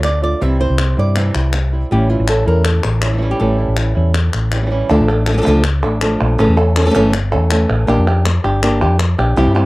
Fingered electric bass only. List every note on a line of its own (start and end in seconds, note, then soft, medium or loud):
0.00 0.33 D2 medium
0.42 0.66 C2 medium
0.70 0.94 C2 medium
0.98 1.30 G2 medium
1.35 1.83 C2 medium
1.92 2.15 A1 medium
2.19 2.43 A1 medium
2.47 2.79 E2 loud
2.85 3.32 A1 medium
3.41 3.65 A1 medium
3.68 3.92 A1 medium
3.97 4.28 E2 loud
4.34 4.82 A1 medium
4.90 4.98 D2 loud
5.00 5.39 A1 loud
5.47 5.84 C#2 medium
5.84 6.15 A1 medium
6.21 6.37 A#1 medium
6.40 6.47 A1 medium
6.49 6.88 E2 medium
6.96 7.35 G1 medium
7.33 7.65 E2 medium
7.70 7.86 A1 medium
7.89 7.96 A#1 medium
7.98 8.38 F2 loud
8.44 8.84 G1 medium
8.82 9.14 F2 medium
9.19 9.35 A#1 medium
9.37 9.46 C2 loud
9.47 9.66 G2 loud